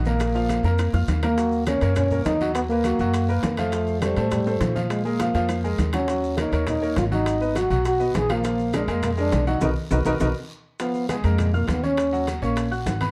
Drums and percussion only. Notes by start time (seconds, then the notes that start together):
0.05 high conga, short guiro, maracas
0.20 high bongo, high conga, high timbale, long guiro, maracas
0.35 high conga, maracas
0.49 high bongo, high conga, high timbale, low timbale, short guiro, maracas
0.64 low bongo, short guiro, maracas
0.79 low bongo, high conga, high timbale, long guiro, maracas
0.93 low bongo, high conga, maracas
1.08 high conga, high timbale, low timbale, short guiro, maracas
1.23 low bongo, high conga, high timbale, short guiro, maracas
1.38 high bongo, high timbale, long guiro, maracas
1.52 high bongo, high conga, maracas
1.66 high bongo, high conga, high timbale, low timbale, short guiro, maracas
1.81 high bongo, high timbale, short guiro, maracas
1.96 high bongo, high conga, low conga, high timbale, long guiro, maracas
2.11 high bongo, high conga, low conga, maracas
2.25 high bongo, low bongo, high conga, high timbale, low timbale, short guiro, maracas
2.41 high conga, short guiro, maracas
2.55 high bongo, high conga, high timbale, long guiro, maracas
2.70 maracas
2.84 high bongo, high conga, high timbale, low timbale, short guiro, maracas
2.99 high bongo, high conga, short guiro, maracas
3.14 high bongo, high conga, high timbale, long guiro, maracas
3.29 high bongo, high conga, maracas
3.43 high bongo, low bongo, high conga, high timbale, low timbale, short guiro, maracas
3.57 high bongo, high conga, high timbale, short guiro, maracas
3.72 high bongo, high conga, high timbale, maracas
3.87 high bongo, high conga, maracas
4.02 high bongo, high conga, high timbale, low timbale, short guiro, maracas
4.16 high bongo, high timbale, short guiro, maracas
4.31 high bongo, high conga, low conga, high timbale, long guiro, maracas
4.46 high bongo, high conga, maracas
4.61 high bongo, low bongo, high conga, high timbale, low timbale, short guiro, maracas
4.76 high conga, short guiro, maracas
4.90 high bongo, high conga, high timbale, long guiro, maracas
5.05 high conga, maracas
5.19 high bongo, high conga, high timbale, low timbale, short guiro, maracas
5.35 high bongo, high conga, short guiro, maracas
5.49 low bongo, high conga, high timbale, long guiro, maracas
5.64 high conga, maracas
5.78 low bongo, high conga, high timbale, low timbale, short guiro, maracas
5.93 low bongo, high conga, high timbale, short guiro, maracas
6.08 high bongo, high conga, high timbale, long guiro, maracas
6.23 high bongo, high conga, maracas
6.37 high bongo, high conga, high timbale, low timbale, short guiro, maracas
6.52 high bongo, high conga, high timbale, short guiro, maracas
6.67 high bongo, high conga, low conga, high timbale, long guiro, maracas
6.81 high bongo, maracas
6.96 high bongo, low bongo, high conga, high timbale, low timbale, short guiro, maracas
7.12 high conga, short guiro, maracas
7.26 high bongo, high timbale, long guiro, maracas
7.42 maracas
7.55 high bongo, high conga, high timbale, low timbale, short guiro, maracas
7.70 high bongo, high conga, short guiro, maracas
7.85 high bongo, high conga, high timbale, long guiro, maracas
8.00 high bongo, high conga, maracas
8.14 high bongo, low bongo, high conga, high timbale, low timbale, short guiro, maracas
8.29 high bongo, high conga, high timbale, short guiro, maracas
8.44 high bongo, high conga, high timbale, long guiro, maracas
8.59 high bongo, high conga, maracas
8.73 high bongo, high conga, high timbale, low timbale, short guiro, maracas
8.88 high bongo, high timbale, short guiro, maracas
9.03 high bongo, high conga, low conga, high timbale, long guiro, maracas
9.17 high bongo, high conga, maracas
9.32 high bongo, low bongo, high conga, high timbale, low timbale, short guiro, maracas
9.47 high conga, short guiro, maracas
9.61 high bongo, high conga, high timbale, long guiro, maracas
9.91 high bongo, high conga, high timbale, long guiro, maracas
10.05 high bongo, high conga, high timbale, long guiro, maracas
10.20 high bongo, high conga, high timbale, long guiro, maracas
10.80 high bongo, high conga, high timbale, long guiro, maracas
10.94 high bongo, high conga, maracas
11.09 high bongo, high conga, high timbale, low timbale, short guiro, maracas
11.23 high bongo, high conga, high timbale, short guiro, maracas
11.38 high bongo, high conga, low conga, high timbale, long guiro, maracas
11.54 high bongo, high conga, low conga, maracas
11.68 high bongo, low bongo, high conga, high timbale, low timbale, short guiro, maracas
11.84 high conga, short guiro, maracas
11.97 high bongo, high conga, high timbale, maracas
12.13 high conga, maracas
12.27 high bongo, high conga, high timbale, low timbale, short guiro, maracas
12.42 high bongo, high conga, short guiro, maracas
12.56 high bongo, high conga, high timbale, long guiro, maracas
12.72 high bongo, high conga, maracas
12.86 high bongo, low bongo, high conga, high timbale, low timbale, short guiro, maracas
13.01 high bongo, high conga, high timbale, short guiro, maracas